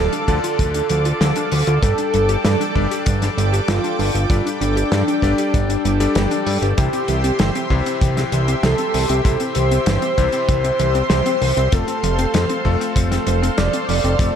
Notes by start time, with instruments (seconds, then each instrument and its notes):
Already playing: electric grand piano D3 D4 F4 A4 D5, analog synth lead A4, analog synth pad A4 D5 F5 D6
0.13 synth arpeggio sound D4, closed hi-hat
0.28 analog synth bass D2, electric grand piano D3 D4 F4 A4 D5, synth arpeggio sound F3, kick, closed hi-hat
0.44 synth arpeggio sound F4, closed hi-hat
0.59 analog synth bass D2, synth arpeggio sound F3, kick, closed hi-hat
0.74 synth arpeggio sound D4, closed hi-hat
0.89 analog synth bass D2, synth arpeggio sound F3, closed hi-hat
1.05 synth arpeggio sound F4, closed hi-hat
1.21 analog synth bass D2, synth arpeggio sound F3, snare, closed hi-hat
1.36 synth arpeggio sound D4, closed hi-hat
1.51 analog synth bass D2, synth arpeggio sound F3, open hi-hat
1.67 analog synth bass D2, synth arpeggio sound F4, closed hi-hat
1.83 analog synth bass G1, electric grand piano G3 D4 G4 A4 D5, synth arpeggio sound G3, analog synth lead A4, analog synth pad G5, kick, closed hi-hat
1.98 synth arpeggio sound D4, closed hi-hat
2.14 analog synth bass G1, synth arpeggio sound G3, closed hi-hat
2.29 synth arpeggio sound G4, closed hi-hat
2.45 analog synth bass G2, synth arpeggio sound G3, snare, closed hi-hat
2.60 synth arpeggio sound D4, closed hi-hat
2.75 analog synth bass G1, electric grand piano G3 D4 G4 A4 D5, synth arpeggio sound G3, kick
2.91 synth arpeggio sound G4, closed hi-hat
3.06 analog synth bass G1, synth arpeggio sound G3, kick, closed hi-hat
3.22 synth arpeggio sound D4, snare, closed hi-hat
3.38 analog synth bass G1, synth arpeggio sound G3, closed hi-hat
3.53 synth arpeggio sound G4, closed hi-hat
3.68 analog synth bass G1, synth arpeggio sound G3, analog synth lead F4, snare, closed hi-hat
3.84 synth arpeggio sound D4, closed hi-hat
3.99 analog synth bass G1, synth arpeggio sound G3, open hi-hat
4.15 analog synth bass G1, synth arpeggio sound G4, closed hi-hat
4.30 analog synth bass G1, synth arpeggio sound G3, electric grand piano G3 D4 G4 A4 D5, kick, closed hi-hat
4.46 synth arpeggio sound D4, closed hi-hat
4.61 analog synth bass G1, synth arpeggio sound G3, analog synth lead D4, closed hi-hat
4.77 synth arpeggio sound G4, closed hi-hat
4.92 analog synth bass G2, synth arpeggio sound G3, snare, closed hi-hat
5.08 synth arpeggio sound D4, closed hi-hat
5.22 analog synth bass G1, electric grand piano G3 D4 G4 A4 D5, synth arpeggio sound G3, kick, closed hi-hat
5.38 synth arpeggio sound G4, closed hi-hat
5.54 analog synth bass G1, synth arpeggio sound G3, kick, closed hi-hat
5.69 synth arpeggio sound D4, closed hi-hat
5.85 analog synth bass G1, synth arpeggio sound G3, closed hi-hat
6.00 electric grand piano G3 D4 G4 A4 D5, synth arpeggio sound G4, closed hi-hat
6.15 analog synth bass G1, synth arpeggio sound G3, snare, closed hi-hat
6.31 synth arpeggio sound D4, closed hi-hat
6.46 analog synth bass G2, synth arpeggio sound G3, open hi-hat
6.62 analog synth bass G1, synth arpeggio sound G4, closed hi-hat
6.77 analog synth bass C2, electric grand piano C3 C4 E4 G4 C5, synth arpeggio sound E3, analog synth lead G4, analog synth pad G4 C5 E5 C6, kick, closed hi-hat
6.93 synth arpeggio sound C4, closed hi-hat
7.08 analog synth bass C2, synth arpeggio sound E3, closed hi-hat
7.24 synth arpeggio sound C4, closed hi-hat
7.39 analog synth bass G1, synth arpeggio sound E3, snare, closed hi-hat
7.55 synth arpeggio sound C4, closed hi-hat
7.70 analog synth bass C2, electric grand piano C3 C4 E4 G4 C5, synth arpeggio sound E3, kick
7.86 synth arpeggio sound C4, closed hi-hat
8.01 analog synth bass C2, synth arpeggio sound E3, kick, closed hi-hat
8.17 synth arpeggio sound C4, snare, closed hi-hat
8.32 analog synth bass C2, synth arpeggio sound E3, closed hi-hat
8.48 synth arpeggio sound C4, closed hi-hat
8.63 analog synth bass C2, synth arpeggio sound E3, analog synth lead A4, snare, closed hi-hat
8.78 synth arpeggio sound C4, closed hi-hat
8.94 analog synth bass C2, synth arpeggio sound E3, open hi-hat
9.09 analog synth bass C2, synth arpeggio sound C4, closed hi-hat
9.25 analog synth bass C2, electric grand piano C3 C4 E4 G4 C5, synth arpeggio sound E3, kick, closed hi-hat
9.40 synth arpeggio sound C4, closed hi-hat
9.55 analog synth bass C2, synth arpeggio sound E3, analog synth lead C5, closed hi-hat
9.71 synth arpeggio sound C4, closed hi-hat
9.86 analog synth bass G1, synth arpeggio sound E3, snare, closed hi-hat
10.02 synth arpeggio sound C4, closed hi-hat
10.18 analog synth bass C2, electric grand piano C3 C4 E4 G4 C5, synth arpeggio sound E3, kick, closed hi-hat
10.32 synth arpeggio sound C4, closed hi-hat
10.49 analog synth bass C2, synth arpeggio sound E3, kick, closed hi-hat
10.64 synth arpeggio sound C4, closed hi-hat
10.79 analog synth bass C2, synth arpeggio sound E3, closed hi-hat
10.95 synth arpeggio sound C4, closed hi-hat
11.10 analog synth bass C2, synth arpeggio sound E3, snare, closed hi-hat
11.26 synth arpeggio sound C4, closed hi-hat
11.41 analog synth bass C2, synth arpeggio sound E3, open hi-hat
11.57 analog synth bass C2, synth arpeggio sound C4, closed hi-hat
11.72 analog synth bass F1, synth arpeggio sound F3, electric grand piano A3 C4 F4 A4, analog synth lead A4, analog synth pad A4 F5, kick, closed hi-hat
11.88 synth arpeggio sound C4, closed hi-hat
12.03 analog synth bass F1, synth arpeggio sound F3, closed hi-hat
12.19 synth arpeggio sound C4, closed hi-hat
12.34 analog synth bass F2, synth arpeggio sound F3, snare, closed hi-hat
12.49 synth arpeggio sound C4, closed hi-hat
12.65 analog synth bass F1, synth arpeggio sound F3, electric grand piano A3 C4 F4 A4, kick
12.81 synth arpeggio sound C4, closed hi-hat
12.96 analog synth bass F1, synth arpeggio sound F3, kick, closed hi-hat
13.11 synth arpeggio sound C4, snare, closed hi-hat
13.27 analog synth bass F1, synth arpeggio sound F3, closed hi-hat
13.42 synth arpeggio sound C4, closed hi-hat
13.58 analog synth bass F1, synth arpeggio sound F3, analog synth lead D5, snare, closed hi-hat
13.73 synth arpeggio sound C4, closed hi-hat
13.89 analog synth bass F1, synth arpeggio sound F3, open hi-hat
14.04 analog synth bass F1, synth arpeggio sound C4, closed hi-hat
14.19 analog synth bass F1, synth arpeggio sound F3, electric grand piano A3 C4 F4 A4, kick, closed hi-hat